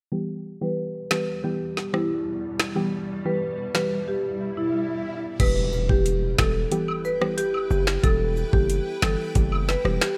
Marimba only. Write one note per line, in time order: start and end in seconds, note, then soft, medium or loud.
0.62 0.87 B4 medium
1.11 1.36 B4 medium
1.44 1.56 G4 medium
1.94 2.06 E4 medium
3.26 3.51 B4 medium
3.75 4.00 B4 medium
4.08 4.20 G4 medium
4.57 4.70 E4 medium
5.40 5.53 B4 loud
5.89 6.02 G4 medium
6.39 6.51 A4 medium
7.05 7.17 B4 medium
7.38 7.50 G4 medium
7.71 7.83 G4 medium
8.04 8.16 A4 loud
8.53 8.66 G4 medium
9.03 9.15 A4 medium
9.68 9.81 B4 medium
10.01 10.14 G4 medium